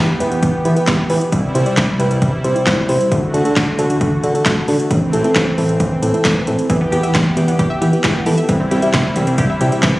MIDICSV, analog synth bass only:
0, 0, Header, 1, 2, 480
1, 0, Start_track
1, 0, Tempo, 447761
1, 1419, Time_signature, 4, 2, 24, 8
1, 10717, End_track
2, 0, Start_track
2, 0, Title_t, "Analog synth bass"
2, 0, Program_c, 0, 38
2, 219, Note_on_c, 0, 40, 103
2, 321, Note_off_c, 0, 40, 0
2, 339, Note_on_c, 0, 40, 111
2, 441, Note_off_c, 0, 40, 0
2, 457, Note_on_c, 0, 40, 114
2, 560, Note_off_c, 0, 40, 0
2, 699, Note_on_c, 0, 52, 96
2, 801, Note_off_c, 0, 52, 0
2, 939, Note_on_c, 0, 40, 104
2, 1041, Note_off_c, 0, 40, 0
2, 1177, Note_on_c, 0, 52, 99
2, 1280, Note_off_c, 0, 52, 0
2, 1420, Note_on_c, 0, 36, 110
2, 1521, Note_off_c, 0, 36, 0
2, 1660, Note_on_c, 0, 36, 110
2, 1762, Note_off_c, 0, 36, 0
2, 1902, Note_on_c, 0, 36, 107
2, 2003, Note_off_c, 0, 36, 0
2, 2138, Note_on_c, 0, 36, 103
2, 2241, Note_off_c, 0, 36, 0
2, 2258, Note_on_c, 0, 36, 99
2, 2361, Note_off_c, 0, 36, 0
2, 2379, Note_on_c, 0, 36, 118
2, 2481, Note_off_c, 0, 36, 0
2, 2619, Note_on_c, 0, 48, 98
2, 2721, Note_off_c, 0, 48, 0
2, 2860, Note_on_c, 0, 36, 111
2, 2962, Note_off_c, 0, 36, 0
2, 3098, Note_on_c, 0, 36, 99
2, 3200, Note_off_c, 0, 36, 0
2, 3341, Note_on_c, 0, 38, 114
2, 3442, Note_off_c, 0, 38, 0
2, 3578, Note_on_c, 0, 38, 99
2, 3681, Note_off_c, 0, 38, 0
2, 3821, Note_on_c, 0, 38, 110
2, 3922, Note_off_c, 0, 38, 0
2, 4060, Note_on_c, 0, 38, 103
2, 4162, Note_off_c, 0, 38, 0
2, 4181, Note_on_c, 0, 38, 105
2, 4282, Note_off_c, 0, 38, 0
2, 4298, Note_on_c, 0, 38, 113
2, 4401, Note_off_c, 0, 38, 0
2, 4539, Note_on_c, 0, 50, 105
2, 4641, Note_off_c, 0, 50, 0
2, 4781, Note_on_c, 0, 38, 113
2, 4883, Note_off_c, 0, 38, 0
2, 5019, Note_on_c, 0, 50, 103
2, 5121, Note_off_c, 0, 50, 0
2, 5260, Note_on_c, 0, 33, 117
2, 5362, Note_off_c, 0, 33, 0
2, 5500, Note_on_c, 0, 33, 103
2, 5602, Note_off_c, 0, 33, 0
2, 5742, Note_on_c, 0, 33, 111
2, 5843, Note_off_c, 0, 33, 0
2, 5979, Note_on_c, 0, 33, 102
2, 6081, Note_off_c, 0, 33, 0
2, 6098, Note_on_c, 0, 33, 105
2, 6201, Note_off_c, 0, 33, 0
2, 6218, Note_on_c, 0, 33, 112
2, 6321, Note_off_c, 0, 33, 0
2, 6456, Note_on_c, 0, 45, 108
2, 6560, Note_off_c, 0, 45, 0
2, 6700, Note_on_c, 0, 33, 113
2, 6802, Note_off_c, 0, 33, 0
2, 6939, Note_on_c, 0, 33, 103
2, 7041, Note_off_c, 0, 33, 0
2, 7179, Note_on_c, 0, 40, 114
2, 7281, Note_off_c, 0, 40, 0
2, 7419, Note_on_c, 0, 40, 108
2, 7521, Note_off_c, 0, 40, 0
2, 7661, Note_on_c, 0, 40, 108
2, 7763, Note_off_c, 0, 40, 0
2, 7898, Note_on_c, 0, 40, 107
2, 8000, Note_off_c, 0, 40, 0
2, 8017, Note_on_c, 0, 40, 107
2, 8120, Note_off_c, 0, 40, 0
2, 8138, Note_on_c, 0, 40, 120
2, 8241, Note_off_c, 0, 40, 0
2, 8378, Note_on_c, 0, 52, 101
2, 8480, Note_off_c, 0, 52, 0
2, 8621, Note_on_c, 0, 40, 104
2, 8722, Note_off_c, 0, 40, 0
2, 8859, Note_on_c, 0, 52, 98
2, 8961, Note_off_c, 0, 52, 0
2, 9099, Note_on_c, 0, 36, 109
2, 9201, Note_off_c, 0, 36, 0
2, 9338, Note_on_c, 0, 36, 108
2, 9441, Note_off_c, 0, 36, 0
2, 9581, Note_on_c, 0, 36, 108
2, 9683, Note_off_c, 0, 36, 0
2, 9820, Note_on_c, 0, 36, 104
2, 9922, Note_off_c, 0, 36, 0
2, 9939, Note_on_c, 0, 36, 99
2, 10041, Note_off_c, 0, 36, 0
2, 10058, Note_on_c, 0, 36, 117
2, 10161, Note_off_c, 0, 36, 0
2, 10298, Note_on_c, 0, 48, 101
2, 10401, Note_off_c, 0, 48, 0
2, 10540, Note_on_c, 0, 36, 116
2, 10642, Note_off_c, 0, 36, 0
2, 10717, End_track
0, 0, End_of_file